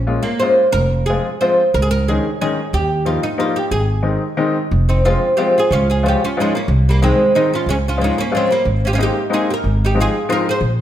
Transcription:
Already playing: A#1
0.07 G#3 A#3 C#4 F4
0.23 A#3
0.40 G#3 A#3 C#4 F4 C5
0.72 F1 A#4
1.06 F3 G#3 C4 F4 G#4
1.41 F3 G#3 C4 F4 C5
1.74 C#2 A#4
1.82 G#4
1.91 A#4
2.08 D#3 G#3 C#4 D#4 G#4
2.41 D#3 G#3 C#4 D#4 G#4
2.73 D#2 G4
3.05 F3 G3 A#3 D#4 F4
3.23 D#4
3.38 F3 G3 A#3 D#4 F4
3.56 G4
3.71 G#1 G#4
4.03 D#3 G#3 C4 D#4
4.37 D#3 G#3 C4 D#4
4.71 F1
4.89 C4 D#4
5.05 F3 G#3 C4 F4
5.37 F3 G#3 C4 F4 G4
5.58 F4 G#4
5.71 C#2 C#4 F4
5.90 F4 G#4
6.03 F3 G#3 C#4 F4
6.08 G4
6.24 C#4 F4
6.37 F3 G#3 C#4 F4
6.41 D#4
6.55 A#3 C#4
6.68 C2
6.89 G3 A#3
7.02 D#3 G#3 C4 D#4
7.35 D#3 G#3 C4 D#4
7.53 C#4 F4
7.66 C#2 G#3 C#4
7.88 C#4 F4
7.97 F3 G#3 C#4 F4
8.01 G#3 D#4
8.18 A#3 C#4
8.31 F3 G#3 C#4 F4
8.37 C4
8.51 G3 A#3
8.65 G#1
8.85 C#4 F4 G4
8.93 C#4 F4
8.98 G#3 A#3 C4 D#4
9.03 G4
9.30 G#3 A#3 C4 D#4
9.34 G#4
9.50 G4 A#4
9.64 G#1
9.85 D#4 G4
9.95 F3 G#3 C4 D#4
10.00 F4 G#4
10.29 F3 G#3 C4 D#4 F4 A#4
10.49 G#4 C5
10.61 A#1

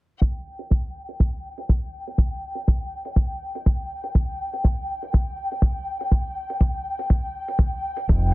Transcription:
0.21 G5, kick, closed hi-hat
0.59 closed hi-hat
0.70 kick, closed hi-hat
1.09 closed hi-hat
1.20 kick, closed hi-hat
1.58 closed hi-hat
1.69 kick, closed hi-hat
2.07 closed hi-hat
2.18 kick, closed hi-hat
2.55 closed hi-hat
2.67 kick, closed hi-hat
3.05 closed hi-hat
3.16 kick, closed hi-hat
3.55 closed hi-hat
3.66 kick, closed hi-hat
4.04 closed hi-hat
4.15 kick, closed hi-hat
4.53 closed hi-hat
4.64 kick, closed hi-hat
5.03 closed hi-hat
5.13 kick, closed hi-hat
5.52 closed hi-hat
5.62 kick, closed hi-hat
6.01 closed hi-hat
6.11 kick, closed hi-hat
6.50 closed hi-hat
6.61 kick, closed hi-hat
6.99 closed hi-hat
7.10 kick, closed hi-hat
7.48 closed hi-hat
7.59 kick, closed hi-hat
7.97 closed hi-hat
8.09 F1 G5, kick, closed hi-hat

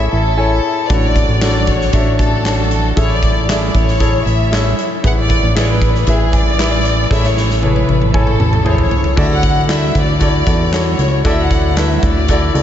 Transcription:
Already playing: A2 E4 G#4 A4 C#5
0.13 A1 A4
0.37 E4 A4 C#5 G#5
0.88 A1 A2 D4 F#4 A4 D5, kick, closed hi-hat
0.92 C#5
1.05 D5
1.16 kick, closed hi-hat
1.28 A1
1.41 D4 F#4 A4 C#5 D5, snare, clap, closed hi-hat
1.67 C#5, kick, closed hi-hat
1.81 snare
1.92 A1 D4 F#4 A4 E5, kick, closed hi-hat
2.19 A4, kick, closed hi-hat
2.45 D4 F#4 A4 C#5, snare, clap, closed hi-hat
2.71 closed hi-hat
2.96 A1 A2 E4 G#4 A4 C#5 E5, kick, closed hi-hat
3.12 D5
3.23 kick, closed hi-hat
3.48 E4 G#4 A4 D5 E5, snare, clap, closed hi-hat
3.69 D5
3.75 A1 C#5, kick, closed hi-hat
3.88 snare
4.00 E4 G#4 A4 C#5, kick, closed hi-hat
4.26 A1 E5, closed hi-hat
4.51 E4 G#4 A4 C#5, snare, clap, closed hi-hat
4.78 closed hi-hat
5.03 A1 A2 E4 G#4 B4 E5 F#5, kick, closed hi-hat
5.19 D5
5.30 kick, closed hi-hat
5.43 A1
5.55 E4 G#4 B4 C#5 D5, snare, clap, closed hi-hat
5.70 B4
5.82 kick, closed hi-hat
5.95 snare
6.06 A1 E4 G#4 B4 E5, kick, closed hi-hat
6.33 D5, kick, closed hi-hat
6.59 E4 G#4 B4 E5, snare, clap, closed hi-hat
6.85 closed hi-hat
7.10 A1 A2 E4 G#4 A4 C#5 E5, kick, snare
7.24 C#5, snare
7.37 snare
7.50 snare
7.62 E4 G#4 A4 B4 C#5, high tom
7.76 high tom
7.89 A1, high tom
8.02 mid tom
8.13 E4 A4 C#5 G#5, kick, mid tom
8.27 mid tom
8.40 A1, mid tom
8.53 mid tom
8.65 E4 G#4 A4 C5, mid tom
8.69 C#5
8.78 C#5, floor tom
8.91 floor tom
9.04 floor tom
9.16 D2 D3 E4 F#4 A4 D5 E5, kick, crash
9.33 F#5
9.43 kick, closed hi-hat
9.68 E4 F#4 A4 D5, snare, clap, closed hi-hat
9.72 E5
9.95 D2 D5, kick, closed hi-hat
10.20 E4 F#4 A4 D5, kick, closed hi-hat
10.46 E2 E4 F#4 A4 D5, kick, closed hi-hat
10.73 E4 F#4 A4 C#5, snare, clap, closed hi-hat
10.88 C#5
10.99 C#2, closed hi-hat
11.25 D2 D3 E4 F#4 A4 D5 E5, kick, closed hi-hat
11.40 F#5
11.51 kick, closed hi-hat
11.77 E4 F#4 A4 B4 E5, snare, clap, closed hi-hat
11.98 E5
12.03 D2 D5, kick, closed hi-hat
12.28 E4 F#4 A4 D5, kick, closed hi-hat
12.54 C#2 E4 F#4 A4 D5, closed hi-hat

